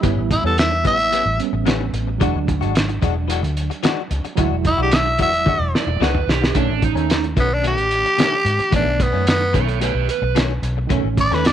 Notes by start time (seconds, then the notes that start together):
0.01 G1 A2 G3 B3, kick, closed hi-hat
0.05 B3 C#4 E4
0.17 A1
0.30 E4, muted clean electric guitar stroke, kick, closed hi-hat
0.43 E2 B3 C#4 A4
0.48 G3
0.57 E5, muted clean electric guitar stroke, snare, closed hi-hat
0.71 muted clean electric guitar stroke
0.84 A1 A2 G3 B3 C#4 E5, kick, closed hi-hat
0.98 muted clean electric guitar stroke, closed hi-hat
1.11 A2 G3 B3 C#4, closed hi-hat
1.25 A1, muted clean electric guitar stroke
1.38 G3 B3 C#4, closed hi-hat
1.53 A1, muted clean electric guitar stroke
1.66 A2 G3 B3 C#4, snare, closed hi-hat
1.93 A1, muted clean electric guitar stroke, closed hi-hat
2.07 muted clean electric guitar stroke
2.18 E1 E3 F#3 G#3 D4, kick, closed hi-hat
2.23 F#4
2.34 D2
2.47 muted clean electric guitar stroke, kick, closed hi-hat
2.61 G#1 G#3 D4 F#4, closed hi-hat
2.75 muted clean electric guitar stroke, snare, closed hi-hat
2.89 muted clean electric guitar stroke, closed hi-hat
3.02 E1 E3 G#3 D4 F#4, kick, closed hi-hat
3.16 muted clean electric guitar stroke
3.28 E3 G#3 D4 F#4, closed hi-hat
3.43 D2, muted clean electric guitar stroke, closed hi-hat
3.57 closed hi-hat
3.70 muted clean electric guitar stroke, closed hi-hat
3.83 E3 G#3 D4 F#4, snare, closed hi-hat
4.10 C#2, muted clean electric guitar stroke, closed hi-hat
4.25 muted clean electric guitar stroke, closed hi-hat
4.36 D2 E3 F#3 G#3 D4 E4 F#4, kick, closed hi-hat
4.51 E1
4.64 E4, muted clean electric guitar stroke, kick, closed hi-hat
4.78 B1 G#3 D4 F#4
4.82 G4
4.91 E5, muted clean electric guitar stroke, snare, closed hi-hat
5.05 muted clean electric guitar stroke
5.18 E1 E3 G#3 D4 F#4, kick, closed hi-hat
5.22 E5
5.33 muted clean electric guitar stroke, closed hi-hat
5.45 E3 G#3 D4 F#4, kick, high tom
5.59 E1, muted clean electric guitar stroke
5.75 D5, snare
5.86 E1, muted clean electric guitar stroke
6.00 C#2 E3 G#3 D4 F#4 B4, snare
6.15 mid tom
6.27 B1 G4, muted clean electric guitar stroke, snare
6.42 muted clean electric guitar stroke, snare
6.52 B1 B2 D#3 A3, kick, closed hi-hat
6.56 A3 C#4 D4
6.67 A1
6.82 D#4, muted clean electric guitar stroke, kick, closed hi-hat
6.95 D#2 D#3 A3 C#4, closed hi-hat
7.09 muted clean electric guitar stroke, snare, closed hi-hat
7.24 muted clean electric guitar stroke, closed hi-hat
7.37 B1 B2 D#3 A3 B3 C#4, kick, closed hi-hat
7.53 D4
7.63 B2 D#3 A3 C#4, closed hi-hat
7.67 G4
7.77 A1, muted clean electric guitar stroke, closed hi-hat
7.91 closed hi-hat
8.05 muted clean electric guitar stroke, closed hi-hat
8.18 B2 D#3 A3 C#4, snare, closed hi-hat
8.45 G#2, muted clean electric guitar stroke, closed hi-hat
8.59 muted fingered electric bass stroke, muted clean electric guitar stroke, closed hi-hat
8.71 A1 B2 D#3 A3 B3 C#4, kick, closed hi-hat
8.76 D4
8.85 B1
8.99 B3, muted clean electric guitar stroke, kick, closed hi-hat
9.13 F#2 D#3 A3 C#4
9.26 B3, muted clean electric guitar stroke, snare, closed hi-hat
9.39 muted clean electric guitar stroke
9.53 B1 B2 D#3 A3 C#4 A4 C#5, kick, closed hi-hat
9.68 muted clean electric guitar stroke, closed hi-hat
9.80 B2 D#3 A3 C#4 G4 B4, closed hi-hat
9.94 B1, muted clean electric guitar stroke
10.09 B4, closed hi-hat
10.22 B1, muted clean electric guitar stroke
10.35 B2 D#3 A3 C#4, snare, closed hi-hat
10.62 B1, muted clean electric guitar stroke, closed hi-hat
10.77 muted clean electric guitar stroke
10.87 B1 B2 D#3 A3, kick, closed hi-hat
10.91 A3 C#4
11.04 A1
11.17 D5, muted clean electric guitar stroke, kick, closed hi-hat
11.31 D#2 D#3 A3 C#4 B4, snare, closed hi-hat
11.44 D5, muted clean electric guitar stroke, snare, closed hi-hat